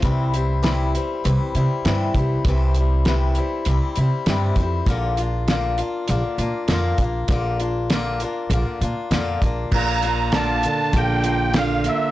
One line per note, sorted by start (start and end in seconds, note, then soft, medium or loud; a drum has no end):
0.02 0.96 C2 medium
0.02 0.33 C3 medium
0.02 0.33 E3 medium
0.02 0.34 G3 medium
0.02 0.34 C4 medium
0.02 0.33 E4 medium
0.02 kick loud
0.02 closed hi-hat medium
0.34 0.62 G3 soft
0.34 0.63 C4 soft
0.34 0.63 E4 soft
0.34 closed hi-hat soft
0.62 0.93 C3 medium
0.62 0.94 E3 medium
0.62 0.94 G3 medium
0.62 0.94 C4 medium
0.62 0.93 E4 medium
0.62 snare loud
0.62 closed hi-hat medium
0.94 1.24 G3 soft
0.94 1.25 C4 soft
0.94 1.24 E4 soft
0.94 closed hi-hat medium
1.24 1.36 C2 medium
1.24 1.54 E3 medium
1.24 1.55 G3 medium
1.24 1.55 C4 medium
1.24 1.55 E4 medium
1.24 closed hi-hat medium
1.55 1.66 C3 medium
1.55 1.86 G3 soft
1.55 1.86 C4 soft
1.55 1.86 E4 medium
1.55 closed hi-hat medium
1.85 2.08 G2 medium
1.85 2.15 C3 medium
1.85 2.16 E3 medium
1.85 2.16 G3 medium
1.85 2.16 C4 medium
1.85 2.15 E4 medium
1.85 snare loud
1.85 closed hi-hat medium
2.15 2.38 C2 medium
2.15 2.47 C4 soft
2.15 2.46 E4 soft
2.15 kick medium
2.15 closed hi-hat medium
2.19 2.47 G3 soft
2.45 3.38 C2 medium
2.45 2.76 C3 medium
2.45 2.77 E3 medium
2.45 2.77 G3 medium
2.45 kick loud
2.45 closed hi-hat medium
2.49 2.77 C4 medium
2.49 2.77 E4 medium
2.75 3.07 E4 medium
2.75 closed hi-hat soft
2.79 3.07 G3 soft
2.79 3.07 C4 soft
3.05 3.37 C3 medium
3.05 3.37 E3 medium
3.05 3.37 G3 medium
3.05 3.37 C4 medium
3.05 3.36 E4 loud
3.05 snare loud
3.05 closed hi-hat medium
3.35 3.68 C4 soft
3.35 3.67 E4 soft
3.35 closed hi-hat medium
3.39 3.68 G3 soft
3.65 3.78 C2 medium
3.65 3.97 E3 medium
3.65 3.98 G3 medium
3.65 closed hi-hat medium
3.70 3.98 C4 medium
3.70 3.97 E4 medium
3.96 4.09 C3 medium
3.96 4.28 E4 medium
3.96 closed hi-hat medium
4.01 4.29 G3 soft
4.01 4.28 C4 soft
4.26 4.50 G2 medium
4.26 4.58 C3 medium
4.26 4.58 E3 medium
4.26 4.59 G3 medium
4.26 4.58 C4 medium
4.26 snare medium
4.26 closed hi-hat medium
4.30 4.58 E4 medium
4.56 4.80 F2 medium
4.56 4.88 E4 medium
4.56 kick medium
4.56 closed hi-hat medium
4.60 4.88 G3 soft
4.60 4.88 C4 soft
4.86 5.80 A#1 medium
4.86 5.18 A#2 medium
4.86 5.18 D3 medium
4.86 5.18 A#3 medium
4.86 5.19 D4 medium
4.86 5.17 F4 medium
4.86 kick medium
4.86 closed hi-hat medium
5.17 5.48 A#3 soft
5.17 5.48 D4 soft
5.17 5.49 F4 medium
5.17 closed hi-hat soft
5.48 5.78 A#2 medium
5.48 5.79 D3 medium
5.48 5.79 A#3 medium
5.48 5.79 D4 medium
5.48 5.77 F4 medium
5.48 snare medium
5.48 closed hi-hat medium
5.78 6.08 A#3 soft
5.78 6.09 D4 soft
5.78 6.09 F4 medium
5.78 closed hi-hat soft
6.08 6.21 A#1 medium
6.08 6.39 D3 medium
6.08 6.39 A#3 medium
6.08 6.39 D4 medium
6.08 6.38 F4 medium
6.08 closed hi-hat medium
6.38 6.50 A#2 medium
6.38 6.71 A#3 soft
6.38 6.70 D4 soft
6.38 6.70 F4 soft
6.38 closed hi-hat soft
6.68 6.92 F2 medium
6.68 7.01 A#2 medium
6.68 7.01 D3 medium
6.68 7.01 A#3 medium
6.68 7.01 D4 medium
6.68 snare medium
6.68 closed hi-hat medium
6.72 6.99 F4 medium
6.98 7.22 A#1 medium
6.98 7.30 D4 soft
6.98 7.31 F4 medium
6.98 kick medium
6.98 closed hi-hat medium
7.04 7.29 A#3 soft
7.28 8.23 A#1 medium
7.28 7.60 A#2 medium
7.28 7.61 D3 medium
7.28 7.61 A#3 medium
7.28 7.60 D4 medium
7.28 kick loud
7.28 closed hi-hat medium
7.32 7.59 F4 medium
7.60 7.91 A#3 soft
7.60 7.91 D4 soft
7.60 7.91 F4 medium
7.60 closed hi-hat soft
7.90 8.22 A#2 medium
7.90 8.22 D3 medium
7.90 8.22 A#3 medium
7.90 8.22 D4 medium
7.90 8.21 F4 medium
7.90 snare loud
7.90 closed hi-hat medium
8.20 8.52 D4 soft
8.20 8.52 F4 medium
8.20 closed hi-hat medium
8.25 8.51 A#3 soft
8.50 8.62 A#1 medium
8.50 8.82 D3 medium
8.50 8.82 A#3 medium
8.50 8.82 D4 medium
8.50 closed hi-hat medium
8.54 8.81 F4 medium
8.81 8.93 A#2 medium
8.81 9.11 A#3 soft
8.81 9.11 D4 soft
8.81 9.12 F4 medium
8.81 closed hi-hat medium
9.11 9.35 F2 medium
9.11 9.42 A#2 medium
9.11 9.43 D3 medium
9.11 9.43 A#3 medium
9.11 9.43 D4 medium
9.11 9.40 F4 medium
9.11 snare medium
9.11 closed hi-hat medium
9.42 9.66 A#1 medium
9.42 9.74 A#3 soft
9.42 9.74 D4 soft
9.42 9.73 F4 medium
9.42 kick medium
9.42 closed hi-hat medium
9.71 10.65 A#1 medium
9.71 10.04 A#2 medium
9.71 10.05 D3 medium
9.71 10.37 A#5 medium
9.71 kick loud
9.71 crash loud
9.75 10.05 A#3 medium
9.75 10.05 D4 medium
9.75 10.03 F4 medium
10.02 11.23 A#3 medium
10.02 10.35 F4 medium
10.02 closed hi-hat medium
10.06 10.34 A#3 soft
10.06 10.35 D4 soft
10.32 10.65 A#2 medium
10.32 10.65 D3 medium
10.32 10.65 A#3 medium
10.32 10.65 D4 medium
10.32 10.97 A5 medium
10.32 snare medium
10.32 closed hi-hat medium
10.36 10.63 F4 medium
10.63 11.53 D3 medium
10.63 10.94 A#3 soft
10.63 10.95 D4 soft
10.63 10.95 F4 soft
10.63 closed hi-hat medium
10.93 11.87 A#1 medium
10.93 11.25 D3 medium
10.93 11.25 A#3 medium
10.93 11.25 D4 medium
10.93 11.23 F4 medium
10.93 11.58 G5 medium
10.93 kick medium
10.93 closed hi-hat medium
11.24 11.56 A#3 soft
11.24 11.56 D4 soft
11.24 11.55 F4 soft
11.24 closed hi-hat medium
11.54 11.86 A#2 medium
11.54 11.87 D3 medium
11.54 11.87 A#3 medium
11.54 11.86 D4 medium
11.54 11.85 F4 medium
11.54 11.87 F5 medium
11.54 snare loud
11.54 closed hi-hat medium
11.84 12.11 A#3 medium
11.84 12.11 D4 soft
11.84 12.11 F4 soft
11.84 12.11 E5 medium
11.84 closed hi-hat medium
11.89 12.11 A#3 soft